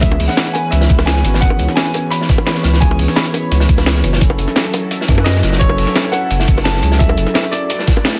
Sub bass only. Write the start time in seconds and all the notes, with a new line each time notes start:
Already playing: C#2
0.20 C#2
0.72 C#2
0.90 C#2
1.25 G#1
1.59 C#2
2.64 C#2
2.99 C#2
3.52 C#2
3.69 C#2
4.04 F#1
4.39 F#1
5.09 F#2
5.43 F#1
5.78 F#1
6.31 F#1
6.48 F#1
6.83 C#2
7.18 F#1